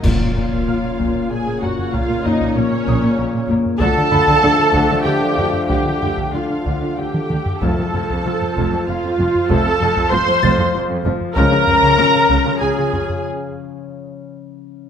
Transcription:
0.03 A#1 A#2 C#3 A#3 C#4 F4 A#4 C#5 F5, concert bass drum, taiko, crash, impact
0.20 A#2
0.35 A#1 A#2, taiko low
0.51 A#2, taiko
0.67 A#1 A#2 A#3 F6
0.82 A#2
0.99 A#1 A#2, taiko
1.15 A#2
1.30 A#1 A#2 G#4 G#5
1.46 A#2
1.61 A#1 A#2 A#3 F#4 F#5, taiko low
1.79 taiko low
1.93 A#1 A#2 F4 F5, taiko
2.09 A#2
2.24 A#1 A#2 D#4 D#5, taiko low
2.40 A#2, taiko
2.55 A#1 A#2 A#3 C#4 C#5
2.72 A#2
2.87 A#1 A#2 D#6, taiko
3.03 A#2
3.18 A#1 A#2
3.34 A#2
3.49 A#1 A#2 A#3, taiko low
3.66 taiko low
3.79 D2 D3 F3 A3 D4 F4 A4 F5 A5, taiko
3.95 D3
4.11 D2 D3 B5, taiko low
4.26 D3, taiko
4.42 D2 D3 D4
4.58 D3
4.73 D2 D3, taiko
4.90 D3
5.03 D2 D3 G4 G5
5.21 D3
5.37 D2 D3 D4, taiko low
5.53 taiko low
5.69 D2 D3 G4 G5, taiko
5.86 D3
6.01 D2 D3 G5, taiko low
6.17 D3, taiko
6.32 D2 D3 F3 A3 D4 F4 F5
6.50 D3
6.66 D2 D3, taiko
6.82 D3
6.97 D2 D3 G4 G5
7.14 D3, taiko mid
7.30 D2 D3 D4, taiko mid
7.46 taiko low
7.62 F1 F2 F3 A3 C4 F4 A4 C5 F5 A5, taiko
7.78 F2
7.94 F1 F2, taiko low
8.10 F2, taiko
8.25 F1 F2 F3
8.41 F2
8.57 F1 F2, taiko
8.73 F2
8.87 F1 F2 F4 F5
9.03 F2
9.18 F1 F2 F3, taiko low
9.35 taiko low
9.49 F1 F2 F3 A3 C4 F4 A4 A5, taiko
9.66 F2
9.81 F1 F2, taiko low
9.96 F2, taiko
10.12 F1 F2 F3 C5 C6
10.28 F2
10.43 F1 F2 C5 A6, taiko
10.59 F2
10.74 F1 F2
10.90 F2
11.05 F1 F2 F3, taiko low
11.21 taiko low
11.35 C#2 C#3 F3 G#3 C#4 F4 A#4 F5 A#5, taiko
11.52 C#3
11.67 C#2 C#3, taiko low
11.83 C#3, taiko
11.98 C#2 C#3 C#4
12.14 C#3
12.29 C#2 C#3, taiko
12.46 C#3
12.60 C#2 C#3 G#4 G#5
12.78 C#3
12.93 C#2 C#3 C#4, taiko low
13.09 taiko low

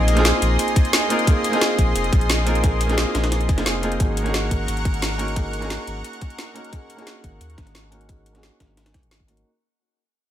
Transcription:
Already playing: A#1 A#3 C4 D#4 F4 G#4 A#4 D#5 C6
0.08 closed hi-hat
0.13 A#3 C4 D#4, snare, closed hi-hat
0.18 F4 G#4
0.25 snare, closed hi-hat
0.42 A#1, closed hi-hat
0.59 closed hi-hat
0.68 closed hi-hat
0.76 kick, closed hi-hat
0.85 closed hi-hat
0.93 snare, closed hi-hat
1.09 A#3 C4 D#4 F4 A#4, closed hi-hat
1.19 closed hi-hat
1.26 A#3 C4 D#4 F4 G#4, kick, closed hi-hat
1.44 closed hi-hat
1.50 A#3 C4 D#4, snare, closed hi-hat
1.55 F4 G#4
1.61 snare, closed hi-hat
1.78 A#1, kick, closed hi-hat
1.96 F1, closed hi-hat
2.04 closed hi-hat
2.13 A#1, kick, closed hi-hat
2.21 closed hi-hat
2.30 snare, closed hi-hat
2.38 snare
2.45 A#3 C4 D#4 F4 A#4, closed hi-hat
2.55 closed hi-hat
2.62 A#3 C4 D#4 F4 G#4, kick, closed hi-hat
2.81 closed hi-hat
2.86 A#3 C4 D#4, snare, closed hi-hat
2.91 F4 G#4
2.98 snare, closed hi-hat
3.15 A#1, snare, closed hi-hat
3.24 snare, closed hi-hat
3.32 snare, closed hi-hat
3.41 closed hi-hat
3.49 F1, kick, closed hi-hat
3.56 A#3 C4 D#4 F4 G#4, snare, closed hi-hat
3.66 F1, snare, closed hi-hat
3.81 A#3 C4 D#4 F4 G#4, closed hi-hat
3.92 closed hi-hat
3.98 G#1 A#3 C#4 D#4 F#4 G#4 A#4 F#5 C#6, kick, closed hi-hat
4.17 closed hi-hat
4.22 A#3 C#4 D#4, snare, closed hi-hat
4.28 F#4 G#4
4.34 snare, closed hi-hat
4.51 G#1, kick, closed hi-hat
4.68 G#1, closed hi-hat
4.77 closed hi-hat
4.85 kick, closed hi-hat
4.94 closed hi-hat
5.02 snare, closed hi-hat
5.11 snare
5.18 A#3 C#4 D#4 F#4 A#4, closed hi-hat
5.28 closed hi-hat
5.35 A#3 C#4 D#4 F#4 G#4, kick, closed hi-hat
5.53 closed hi-hat
5.59 A#3 C#4 D#4, snare, closed hi-hat
5.64 F#4 G#4
5.70 snare, closed hi-hat
5.87 G#1, closed hi-hat
6.04 closed hi-hat
6.13 closed hi-hat
6.21 kick, closed hi-hat
6.30 closed hi-hat
6.38 snare, closed hi-hat
6.54 A#3 C#4 D#4 F#4 A#4, closed hi-hat
6.64 closed hi-hat
6.71 A#3 C#4 D#4 F#4 G#4, kick, closed hi-hat
6.90 closed hi-hat
6.95 A#3 C#4 D#4, snare, closed hi-hat
7.00 F#4 G#4
7.07 snare, closed hi-hat
7.24 G#1, kick, closed hi-hat
7.41 D#2, closed hi-hat
7.50 closed hi-hat
7.58 G#1, kick, snare, closed hi-hat
7.67 snare, closed hi-hat
7.75 snare, closed hi-hat
7.84 snare
7.90 A#3 C#4 D#4 F#4 A#4, closed hi-hat
8.01 closed hi-hat
8.07 A#3 C#4 D#4 F#4 G#4, kick, closed hi-hat
8.26 closed hi-hat
8.31 A#3 C#4 D#4, snare, closed hi-hat
8.37 F#4 G#4
8.43 snare, closed hi-hat
8.60 G#1, kick, snare, closed hi-hat
8.77 snare, closed hi-hat
8.86 snare, closed hi-hat
8.94 C#2, kick, snare, closed hi-hat
9.03 G#1, closed hi-hat
9.11 snare, closed hi-hat
9.20 kick
9.27 A#3 C#4 D#4 F#4 A#4, closed hi-hat
9.37 closed hi-hat

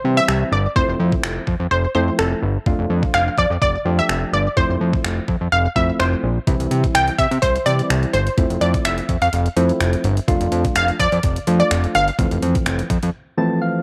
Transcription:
Already playing: C5
0.04 C3 E3 G3 C4 E4
0.17 E5
0.28 C2, finger snap
0.52 G1 D5
0.76 F1 F3 A3 C4 E4 C5, kick
0.88 F1
1.00 F2
1.12 kick
1.23 F1, finger snap
1.47 F2, kick
1.60 F2
1.71 F1 C5
1.95 F2 F3 A3 C4 E4 C5
2.19 F1 A4, finger snap
2.42 G1
2.66 F1 F3 A3 D4 F4, kick
2.79 F1
2.90 F2
3.03 kick
3.14 F1 F5, finger snap
3.38 F2 D5, kick
3.50 F2
3.62 F1 D5, kick
3.85 F2 F3 A3 D4 G4
3.99 E5
4.09 F1, finger snap
4.33 G1 D5
4.56 F1 F3 A3 C4 E4 C5, kick
4.69 F1
4.81 F2
4.93 kick
5.04 F1, finger snap
5.28 F2, kick
5.41 F2
5.52 F1 F5
5.76 F2 F3 A3 C4 E4 E5, kick
6.00 F1 C5, finger snap
6.23 A#1
6.47 C2 E3 G3 C4 E4, kick, closed hi-hat
6.60 C2, closed hi-hat
6.71 C3, closed hi-hat
6.84 kick, closed hi-hat
6.95 C2 G5, finger snap, closed hi-hat
7.08 closed hi-hat
7.18 C3 E5, kick, closed hi-hat
7.31 C3, closed hi-hat
7.42 C2 C5, kick, closed hi-hat
7.56 closed hi-hat
7.66 C3 E3 G3 C4 E4 D5, closed hi-hat
7.79 closed hi-hat
7.90 C2, finger snap, closed hi-hat
8.03 closed hi-hat
8.13 G1 C5, closed hi-hat
8.27 closed hi-hat
8.37 F1 F3 A3 C4 E4, kick, closed hi-hat
8.50 F1, closed hi-hat
8.61 F2 D5, closed hi-hat
8.74 kick, closed hi-hat
8.85 F1 E5, finger snap, closed hi-hat
8.98 closed hi-hat
9.09 F2, kick, closed hi-hat
9.22 F2 F5, closed hi-hat
9.33 F1, closed hi-hat
9.46 closed hi-hat
9.56 F2 F3 A3 C4 E4, closed hi-hat
9.69 closed hi-hat
9.80 F1, finger snap, closed hi-hat
9.93 closed hi-hat
10.04 G1, closed hi-hat
10.17 closed hi-hat
10.28 F1 F3 A3 D4 F4, kick, closed hi-hat
10.41 F1, closed hi-hat
10.52 F2, closed hi-hat
10.65 kick, closed hi-hat
10.75 F1 F5, finger snap, closed hi-hat
10.88 closed hi-hat
11.00 F2 D5, kick, closed hi-hat
11.12 F2, closed hi-hat
11.23 F1, kick, closed hi-hat
11.36 closed hi-hat
11.47 F2 F3 A3 D4 F4, closed hi-hat
11.60 D5, closed hi-hat
11.71 F1, finger snap, closed hi-hat
11.84 closed hi-hat
11.95 G1 F5, closed hi-hat
12.08 closed hi-hat
12.19 F1 E3 F3 A3 C4, kick, closed hi-hat
12.31 F1, closed hi-hat
12.42 F2, closed hi-hat
12.55 kick, closed hi-hat
12.66 F1, finger snap, closed hi-hat
12.79 closed hi-hat
12.90 F2, kick, closed hi-hat
13.03 F2, closed hi-hat
13.37 E3 F3 A3 C4 A5
13.62 F5

